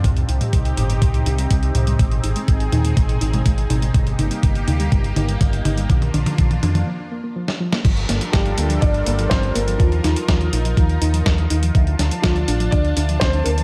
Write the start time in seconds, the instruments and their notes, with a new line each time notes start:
0.04 fingered electric bass C2, synth arpeggio sound G3, analog synth pad C4 D#4 G4, kick, closed hi-hat, mid tom
0.17 closed hi-hat
0.28 fingered electric bass C2, synth arpeggio sound D#4, closed hi-hat
0.41 synth arpeggio sound G3, closed hi-hat, mid tom
0.53 fingered electric bass C2, synth arpeggio sound G3, kick, closed hi-hat
0.65 closed hi-hat
0.77 fingered electric bass G1, synth arpeggio sound D#4, closed hi-hat, mid tom
0.90 synth arpeggio sound G3, closed hi-hat
1.02 fingered electric bass C2, synth arpeggio sound G3, kick, closed hi-hat, mid tom
1.14 closed hi-hat
1.26 fingered electric bass C2, synth arpeggio sound D#4, closed hi-hat
1.38 synth arpeggio sound G3, closed hi-hat
1.50 fingered electric bass C2, synth arpeggio sound G3, kick, closed hi-hat
1.63 closed hi-hat
1.75 fingered electric bass C2, synth arpeggio sound D#4, closed hi-hat, mid tom
1.87 synth arpeggio sound G3, closed hi-hat
1.99 fingered electric bass G#1, synth arpeggio sound G#3, analog synth pad G#4, kick, closed hi-hat, mid tom
2.11 closed hi-hat
2.24 fingered electric bass G#1, synth arpeggio sound D#4, closed hi-hat
2.36 synth arpeggio sound G#3, closed hi-hat
2.48 fingered electric bass G#1, synth arpeggio sound G#3, kick, closed hi-hat
2.60 closed hi-hat
2.72 fingered electric bass D#2, synth arpeggio sound D#4, closed hi-hat, mid tom
2.85 synth arpeggio sound G#3, closed hi-hat
2.97 fingered electric bass G#1, synth arpeggio sound G#3, kick, closed hi-hat, mid tom
3.09 closed hi-hat
3.21 fingered electric bass G#1, synth arpeggio sound D#4, closed hi-hat
3.33 synth arpeggio sound G#3, closed hi-hat, mid tom
3.46 fingered electric bass G#1, synth arpeggio sound G#3, kick, closed hi-hat
3.58 closed hi-hat
3.70 fingered electric bass G#1, synth arpeggio sound D#4, closed hi-hat, mid tom
3.82 synth arpeggio sound G#3, closed hi-hat
3.94 fingered electric bass G1, synth arpeggio sound G3, analog synth pad A#3 G4, kick, closed hi-hat, mid tom
4.07 closed hi-hat
4.19 fingered electric bass G1, synth arpeggio sound D#4, closed hi-hat, mid tom
4.31 synth arpeggio sound G3, closed hi-hat
4.43 fingered electric bass G1, synth arpeggio sound G3, kick, closed hi-hat, mid tom
4.55 closed hi-hat
4.68 fingered electric bass D2, synth arpeggio sound D#4, closed hi-hat, mid tom
4.80 synth arpeggio sound G3, closed hi-hat
4.92 fingered electric bass G1, synth arpeggio sound G3, kick, closed hi-hat, mid tom
5.04 closed hi-hat
5.16 fingered electric bass G1, synth arpeggio sound D#4, closed hi-hat, mid tom
5.28 synth arpeggio sound G3, closed hi-hat
5.41 fingered electric bass G1, synth arpeggio sound G3, kick, closed hi-hat, mid tom
5.53 closed hi-hat
5.65 fingered electric bass G1, synth arpeggio sound D#4, closed hi-hat, mid tom
5.77 synth arpeggio sound G3, closed hi-hat
5.89 fingered electric bass A#1, synth arpeggio sound F3, analog synth pad D4 F4, kick, closed hi-hat, mid tom
6.02 closed hi-hat, mid tom
6.14 fingered electric bass A#1, synth arpeggio sound D4, closed hi-hat, mid tom
6.26 synth arpeggio sound F3, closed hi-hat, mid tom
6.38 fingered electric bass A#1, synth arpeggio sound F3, kick, closed hi-hat, mid tom
6.51 closed hi-hat, mid tom
6.63 fingered electric bass F2, synth arpeggio sound D4, closed hi-hat, mid tom
6.75 synth arpeggio sound F3, closed hi-hat, mid tom
6.87 synth arpeggio sound F3
7.12 synth arpeggio sound A#3
7.24 synth arpeggio sound A#3
7.36 synth arpeggio sound F3
7.48 snare
7.60 synth arpeggio sound F3
7.72 synth arpeggio sound A#3, snare
7.85 fingered electric bass G1, synth arpeggio sound F3, analog synth pad G3 D4 F4 A4 A#4, kick, closed hi-hat, crash
7.97 closed hi-hat
8.09 fingered electric bass G1, synth arpeggio sound A#3, snare, closed hi-hat
8.21 synth arpeggio sound F3, closed hi-hat
8.32 fingered electric bass G1, synth arpeggio sound F3, grand piano G3 G4, kick, snare, closed hi-hat
8.46 closed hi-hat
8.58 fingered electric bass D2, synth arpeggio sound A#3, closed hi-hat
8.70 synth arpeggio sound F3, closed hi-hat
8.81 fingered electric bass G1, synth arpeggio sound F3, grand piano D4 D5, kick, closed hi-hat
8.94 closed hi-hat
9.06 fingered electric bass G1, synth arpeggio sound A#3, closed hi-hat
9.19 synth arpeggio sound F3, closed hi-hat
9.30 fingered electric bass G1, synth arpeggio sound F3, grand piano C4 C5, kick, snare, closed hi-hat
9.43 closed hi-hat
9.54 fingered electric bass G1, synth arpeggio sound A#3, grand piano A#3 A#4, closed hi-hat
9.68 synth arpeggio sound F3, closed hi-hat
9.78 fingered electric bass D#2, synth arpeggio sound F3, grand piano F3 F4, analog synth pad D#4, kick, closed hi-hat
9.92 closed hi-hat
10.04 fingered electric bass D#2, synth arpeggio sound D#4, snare, closed hi-hat
10.16 synth arpeggio sound F3, closed hi-hat
10.29 fingered electric bass D#2, synth arpeggio sound F3, kick, snare, closed hi-hat
10.41 closed hi-hat
10.53 fingered electric bass A#1, synth arpeggio sound D#4, closed hi-hat
10.65 synth arpeggio sound F3, closed hi-hat
10.77 fingered electric bass D#2, synth arpeggio sound F3, kick, closed hi-hat
10.90 closed hi-hat
11.02 fingered electric bass D#2, synth arpeggio sound D#4, closed hi-hat
11.14 synth arpeggio sound F3, closed hi-hat
11.26 fingered electric bass D#2, synth arpeggio sound F3, kick, snare, closed hi-hat
11.38 closed hi-hat
11.50 fingered electric bass D#2, synth arpeggio sound D#4, closed hi-hat
11.63 synth arpeggio sound F3, closed hi-hat
11.75 fingered electric bass D2, synth arpeggio sound F3, analog synth pad D4 F4 A5, kick, closed hi-hat
11.87 closed hi-hat
11.99 fingered electric bass D2, synth arpeggio sound D4, snare, closed hi-hat
12.11 synth arpeggio sound F3, closed hi-hat
12.22 fingered electric bass D2, synth arpeggio sound F3, grand piano F3 F4, kick, snare, closed hi-hat
12.36 closed hi-hat
12.48 fingered electric bass A1, synth arpeggio sound D4, closed hi-hat
12.60 synth arpeggio sound F3, closed hi-hat
12.71 fingered electric bass D2, synth arpeggio sound F3, grand piano D4 D5, kick, closed hi-hat
12.85 closed hi-hat
12.97 fingered electric bass D2, synth arpeggio sound D4, closed hi-hat
13.09 synth arpeggio sound F3, closed hi-hat
13.20 fingered electric bass D2, synth arpeggio sound F3, grand piano C4 C5, kick, snare, closed hi-hat
13.33 closed hi-hat
13.44 fingered electric bass D2, grand piano A#3 A#4, synth arpeggio sound D4, closed hi-hat
13.58 synth arpeggio sound F3, closed hi-hat